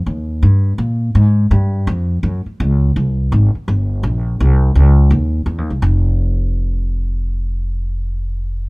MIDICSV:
0, 0, Header, 1, 3, 480
1, 0, Start_track
1, 0, Tempo, 361882
1, 76, Time_signature, 4, 2, 24, 8
1, 11526, End_track
2, 0, Start_track
2, 0, Title_t, "Upright bass"
2, 0, Program_c, 0, 32
2, 85, Note_on_c, 0, 39, 90
2, 547, Note_off_c, 0, 39, 0
2, 564, Note_on_c, 0, 43, 98
2, 1027, Note_off_c, 0, 43, 0
2, 1037, Note_on_c, 0, 46, 97
2, 1503, Note_off_c, 0, 46, 0
2, 1524, Note_on_c, 0, 44, 102
2, 1987, Note_off_c, 0, 44, 0
2, 2001, Note_on_c, 0, 43, 98
2, 2466, Note_off_c, 0, 43, 0
2, 2481, Note_on_c, 0, 41, 101
2, 2946, Note_off_c, 0, 41, 0
2, 2958, Note_on_c, 0, 42, 96
2, 3251, Note_off_c, 0, 42, 0
2, 3449, Note_on_c, 0, 37, 103
2, 3910, Note_off_c, 0, 37, 0
2, 3926, Note_on_c, 0, 36, 94
2, 4389, Note_off_c, 0, 36, 0
2, 4403, Note_on_c, 0, 32, 100
2, 4695, Note_off_c, 0, 32, 0
2, 4879, Note_on_c, 0, 31, 91
2, 5341, Note_off_c, 0, 31, 0
2, 5349, Note_on_c, 0, 34, 96
2, 5821, Note_off_c, 0, 34, 0
2, 5841, Note_on_c, 0, 36, 100
2, 6298, Note_off_c, 0, 36, 0
2, 6306, Note_on_c, 0, 37, 99
2, 6763, Note_off_c, 0, 37, 0
2, 6771, Note_on_c, 0, 39, 96
2, 7232, Note_off_c, 0, 39, 0
2, 7240, Note_on_c, 0, 40, 92
2, 7402, Note_off_c, 0, 40, 0
2, 7402, Note_on_c, 0, 39, 60
2, 7556, Note_off_c, 0, 39, 0
2, 7564, Note_on_c, 0, 36, 66
2, 7713, Note_off_c, 0, 36, 0
2, 7721, Note_on_c, 0, 29, 102
2, 11526, Note_off_c, 0, 29, 0
2, 11526, End_track
3, 0, Start_track
3, 0, Title_t, "Muted upright bass strokes"
3, 3263, Note_on_c, 9, 29, 43
3, 3396, Note_off_c, 9, 29, 0
3, 4707, Note_on_c, 9, 29, 42
3, 4840, Note_off_c, 9, 29, 0
3, 11526, End_track
0, 0, End_of_file